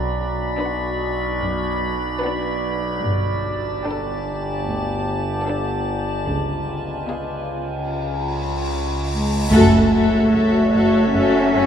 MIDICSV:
0, 0, Header, 1, 11, 480
1, 0, Start_track
1, 0, Tempo, 810811
1, 1791, Time_signature, 4, 2, 24, 8
1, 6904, End_track
2, 0, Start_track
2, 0, Title_t, "Violin section"
2, 0, Program_c, 0, 48
2, 349, Note_on_c, 0, 78, 45
2, 710, Note_off_c, 0, 78, 0
2, 1305, Note_on_c, 0, 78, 45
2, 1668, Note_off_c, 0, 78, 0
2, 2269, Note_on_c, 0, 79, 35
2, 2630, Note_off_c, 0, 79, 0
2, 3231, Note_on_c, 0, 79, 32
2, 3591, Note_off_c, 0, 79, 0
2, 4192, Note_on_c, 0, 77, 31
2, 4552, Note_off_c, 0, 77, 0
2, 5633, Note_on_c, 0, 76, 45
2, 5855, Note_off_c, 0, 76, 0
2, 5880, Note_on_c, 0, 76, 33
2, 6106, Note_off_c, 0, 76, 0
2, 6113, Note_on_c, 0, 76, 34
2, 6343, Note_off_c, 0, 76, 0
2, 6350, Note_on_c, 0, 76, 33
2, 6585, Note_off_c, 0, 76, 0
2, 6595, Note_on_c, 0, 76, 32
2, 6828, Note_off_c, 0, 76, 0
2, 6835, Note_on_c, 0, 76, 30
2, 6904, Note_off_c, 0, 76, 0
2, 6904, End_track
3, 0, Start_track
3, 0, Title_t, "Synth texture"
3, 0, Program_c, 1, 99
3, 0, Note_on_c, 1, 66, 50
3, 0, Note_on_c, 1, 74, 49
3, 0, Note_on_c, 1, 83, 47
3, 1762, Note_off_c, 1, 66, 0
3, 1763, Note_off_c, 1, 83, 0
3, 1786, Note_on_c, 1, 67, 48
3, 1789, Note_on_c, 1, 81, 48
3, 3683, Note_off_c, 1, 74, 0
3, 3709, Note_off_c, 1, 67, 0
3, 3710, Note_off_c, 1, 81, 0
3, 3713, Note_on_c, 1, 71, 43
3, 3713, Note_on_c, 1, 80, 42
3, 3717, Note_on_c, 1, 65, 44
3, 4672, Note_off_c, 1, 71, 0
3, 4672, Note_off_c, 1, 80, 0
3, 4674, Note_off_c, 1, 65, 0
3, 5631, Note_on_c, 1, 73, 58
3, 5636, Note_on_c, 1, 66, 67
3, 5636, Note_on_c, 1, 76, 57
3, 6904, Note_off_c, 1, 66, 0
3, 6904, Note_off_c, 1, 73, 0
3, 6904, Note_off_c, 1, 76, 0
3, 6904, End_track
4, 0, Start_track
4, 0, Title_t, "Violin section"
4, 0, Program_c, 2, 48
4, 348, Note_on_c, 2, 71, 39
4, 709, Note_off_c, 2, 71, 0
4, 1309, Note_on_c, 2, 71, 46
4, 1670, Note_off_c, 2, 71, 0
4, 2271, Note_on_c, 2, 69, 33
4, 2631, Note_off_c, 2, 69, 0
4, 3240, Note_on_c, 2, 69, 32
4, 3596, Note_off_c, 2, 69, 0
4, 4197, Note_on_c, 2, 68, 24
4, 4554, Note_off_c, 2, 68, 0
4, 5634, Note_on_c, 2, 69, 47
4, 5856, Note_off_c, 2, 69, 0
4, 5872, Note_on_c, 2, 69, 29
4, 6105, Note_off_c, 2, 69, 0
4, 6112, Note_on_c, 2, 69, 27
4, 6345, Note_off_c, 2, 69, 0
4, 6352, Note_on_c, 2, 69, 30
4, 6587, Note_off_c, 2, 69, 0
4, 6594, Note_on_c, 2, 69, 35
4, 6827, Note_off_c, 2, 69, 0
4, 6837, Note_on_c, 2, 69, 33
4, 6904, Note_off_c, 2, 69, 0
4, 6904, End_track
5, 0, Start_track
5, 0, Title_t, "Viola section"
5, 0, Program_c, 3, 48
5, 347, Note_on_c, 3, 62, 43
5, 709, Note_off_c, 3, 62, 0
5, 1311, Note_on_c, 3, 62, 47
5, 1671, Note_off_c, 3, 62, 0
5, 2272, Note_on_c, 3, 62, 41
5, 2632, Note_off_c, 3, 62, 0
5, 3233, Note_on_c, 3, 62, 33
5, 3592, Note_off_c, 3, 62, 0
5, 4195, Note_on_c, 3, 59, 27
5, 4553, Note_off_c, 3, 59, 0
5, 5631, Note_on_c, 3, 66, 47
5, 5854, Note_off_c, 3, 66, 0
5, 5877, Note_on_c, 3, 66, 28
5, 6107, Note_off_c, 3, 66, 0
5, 6115, Note_on_c, 3, 66, 30
5, 6348, Note_off_c, 3, 66, 0
5, 6355, Note_on_c, 3, 66, 34
5, 6588, Note_off_c, 3, 66, 0
5, 6598, Note_on_c, 3, 66, 37
5, 6827, Note_off_c, 3, 66, 0
5, 6834, Note_on_c, 3, 66, 33
5, 6904, Note_off_c, 3, 66, 0
5, 6904, End_track
6, 0, Start_track
6, 0, Title_t, "Cello section"
6, 0, Program_c, 4, 48
6, 0, Note_on_c, 4, 47, 58
6, 255, Note_off_c, 4, 47, 0
6, 835, Note_on_c, 4, 42, 52
6, 1217, Note_off_c, 4, 42, 0
6, 1795, Note_on_c, 4, 43, 48
6, 2177, Note_off_c, 4, 43, 0
6, 2753, Note_on_c, 4, 38, 39
6, 3136, Note_off_c, 4, 38, 0
6, 3712, Note_on_c, 4, 49, 37
6, 4096, Note_off_c, 4, 49, 0
6, 5395, Note_on_c, 4, 56, 36
6, 5616, Note_off_c, 4, 56, 0
6, 5631, Note_on_c, 4, 57, 62
6, 6567, Note_off_c, 4, 57, 0
6, 6592, Note_on_c, 4, 61, 56
6, 6904, Note_off_c, 4, 61, 0
6, 6904, End_track
7, 0, Start_track
7, 0, Title_t, "Double bass section"
7, 0, Program_c, 5, 48
7, 0, Note_on_c, 5, 35, 53
7, 256, Note_off_c, 5, 35, 0
7, 1791, Note_on_c, 5, 31, 51
7, 2175, Note_off_c, 5, 31, 0
7, 3711, Note_on_c, 5, 37, 40
7, 4095, Note_off_c, 5, 37, 0
7, 5634, Note_on_c, 5, 42, 53
7, 5856, Note_off_c, 5, 42, 0
7, 5876, Note_on_c, 5, 42, 33
7, 5924, Note_off_c, 5, 42, 0
7, 6113, Note_on_c, 5, 42, 31
7, 6160, Note_off_c, 5, 42, 0
7, 6352, Note_on_c, 5, 42, 36
7, 6399, Note_off_c, 5, 42, 0
7, 6592, Note_on_c, 5, 42, 38
7, 6639, Note_off_c, 5, 42, 0
7, 6835, Note_on_c, 5, 42, 32
7, 6883, Note_off_c, 5, 42, 0
7, 6904, End_track
8, 0, Start_track
8, 0, Title_t, "Synth drone"
8, 0, Program_c, 6, 95
8, 0, Note_on_c, 6, 35, 62
8, 1766, Note_off_c, 6, 35, 0
8, 1788, Note_on_c, 6, 31, 62
8, 3710, Note_off_c, 6, 31, 0
8, 3711, Note_on_c, 6, 37, 58
8, 5630, Note_on_c, 6, 30, 60
8, 5631, Note_off_c, 6, 37, 0
8, 6904, Note_off_c, 6, 30, 0
8, 6904, End_track
9, 0, Start_track
9, 0, Title_t, "Cymbal swell"
9, 0, Program_c, 7, 119
9, 3713, Note_on_c, 7, 60, 31
9, 5632, Note_off_c, 7, 60, 0
9, 6904, End_track
10, 0, Start_track
10, 0, Title_t, "Impact"
10, 0, Program_c, 8, 103
10, 5632, Note_on_c, 8, 60, 40
10, 6904, Note_off_c, 8, 60, 0
10, 6904, End_track
11, 0, Start_track
11, 0, Title_t, "Taiko and cinematic ensemble drums"
11, 5630, Note_on_c, 9, 41, 47
11, 5690, Note_off_c, 9, 41, 0
11, 6904, End_track
0, 0, End_of_file